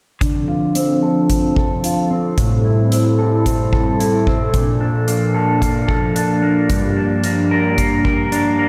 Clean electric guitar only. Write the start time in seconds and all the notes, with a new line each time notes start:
0.21 D3
0.48 F4
0.75 C4
1.03 A4
1.29 C4
1.56 A4
1.83 F4
2.11 C4
2.37 A2
2.65 E4
2.92 C4
3.19 A4
3.46 C4
3.73 A4
4.00 E4
4.27 C4
4.54 A#2
4.80 D4
5.08 A#3
5.34 A4
5.61 A#3
5.88 A4
6.15 D4
6.42 A#3
6.69 G2
6.97 D4
7.24 A#3
7.51 A#4
7.78 A#3
8.05 A#4
8.32 D4
8.59 A#3